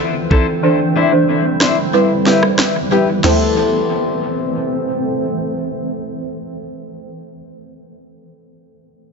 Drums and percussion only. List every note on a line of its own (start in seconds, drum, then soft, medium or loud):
0.31 kick medium
1.60 cross-stick medium
1.60 snare loud
2.26 snare medium
2.43 cross-stick loud
2.58 cross-stick medium
2.58 snare loud
3.24 snare loud
3.24 floor tom loud
3.24 crash medium